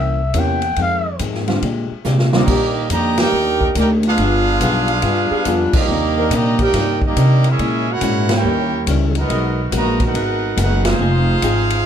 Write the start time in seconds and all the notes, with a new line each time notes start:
Already playing: C2 C3 E3 A#3 C#4 E5
0.34 E2 C3 E3 A#3 C#4 E4 G4, kick, hi-hat pedal, ride
0.39 G5
0.62 ride
0.76 F2 D#3 G#3 C4, kick, ride
0.81 F5
1.19 F2 G#2 D#3 G#3 C4, kick, hi-hat pedal, ride
1.34 snare
1.48 D3 G3 C4 F4, snare, ride
1.62 A#2 G#3 D4 G4, kick, ride
1.91 muted upright bass stroke
2.04 A#2 C3 G#3 D4 G4, snare, hi-hat pedal
2.19 snare
2.33 D#2 D3 G3 A#3 C4 D#4 F4 G4 D5 D#5, snare
2.47 A#2 D#3 A#3 D4 G4, kick, crash
2.90 F2 D3 D#3 G3 A#3 D4 G4 D#5 A#5, kick, hi-hat pedal, ride
2.94 D5
3.18 A#3 D#4 G4 A#4 D5 G5, snare, ride
3.32 D#2 D#3 A#3 D4 G4
3.59 A#3 D4 D#4 A#4, kick
3.75 D2 D#3 A#3 D4 G4, kick, hi-hat pedal, ride
3.79 D#4 A#4 D5 G5
4.03 B3 D4 F4, ride
4.07 D4 G#4 B4 F5
4.18 G1 G3 B3 F4 G#4, kick, ride
4.60 B1 G3 B3 F4 G#4, kick, hi-hat pedal, ride
4.88 ride
5.02 G2 G3 B3 F4 G#4, kick, ride
5.31 G3 B3 F4 G#4, muted upright bass stroke
5.45 F2 G3 B3 F4 G#4, kick, hi-hat pedal, ride
5.73 D#3 G3 A#3 C4 D4 D#4 F4, kick, crash
5.78 A#3 G4 D5 D#5
5.88 D#2 C3 D#3 A#3 D4
6.17 D#3 C4 D4 A#4
6.30 A#2 C3 D#3 G3 A#3 D4, kick, hi-hat pedal, ride
6.34 D#3 G4 D5 D#5 A#5
6.59 D#3 A#3 C4 D4 D#4 G4 A#4, kick, ride
6.63 D#4 D5 G5
6.73 G2 C3 D#3 A#3 D4, kick, snare, ride
7.02 G3 A#3 D#4, kick
7.07 A#3 G4 D5 D#5
7.16 C3 D#3 A#3 D4, kick, hi-hat pedal, ride
7.44 C#4 E4, ride
7.48 G#3 C#4 G#4 A#4 E5
7.59 A#2 G#3 C#4 E4, kick, ride
7.88 G#3 C#4 F#4 C#5
7.92 E4 A#4 F#5
8.01 G#2 A#2 G#3 C#4 E4, kick, hi-hat pedal, ride
8.29 G4, snare, ride
8.33 A#3 C#4 E4 A#4 C#5 G5
8.43 D#2 D#3 E3 G3 C#4 D#4 E4 G4
8.86 C#2 D#3 E3 G3 C#4 D#4 E4 A#4, kick, hi-hat pedal, ride
9.15 F#3 B3 D#4, ride
9.19 B3 F#4 A#4 D#5
9.27 B1 G#3 B3 F#4 A#4, kick, ride
9.31 A#4
9.72 A#1 D#3 F#3 G#3 A#3 B3 F#4 A#4, kick, hi-hat pedal, ride
9.77 F#4 B4 D#5 A#5
10.00 B3 D#4 F#4, kick, ride
10.05 D#4 A#4 B4 F#5
10.13 G#1 G#3 B3 F#4 A#4, ride
10.57 F#1 G#3 B3 D#4 F#4 A#4, kick, hi-hat pedal, ride
10.62 D#4 A#4 B4 F#5
10.85 G#3 C4 F4, snare, ride
10.90 D#4 G#4 C5 F5
10.99 F1 F3 C4 D#4 G#4
11.42 G#1 F3 C4 D#4 G#4, kick, hi-hat pedal, ride
11.70 ride